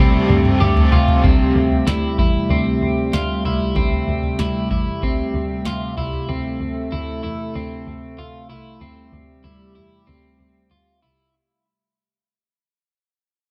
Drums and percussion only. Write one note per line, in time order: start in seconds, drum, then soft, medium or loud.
0.29 mid tom loud
0.45 mid tom medium
0.61 mid tom loud
0.77 floor tom loud
0.92 floor tom loud
1.08 floor tom loud
1.24 kick loud
1.24 floor tom loud
1.72 floor tom soft
1.87 snare loud
2.19 kick medium
2.51 floor tom medium
3.13 snare loud
3.45 floor tom medium
3.60 floor tom medium
3.76 kick medium
3.76 floor tom loud
4.23 floor tom soft
4.39 snare loud
4.71 kick medium
5.03 kick medium
5.03 floor tom soft
5.65 snare medium
5.98 floor tom medium
6.13 floor tom medium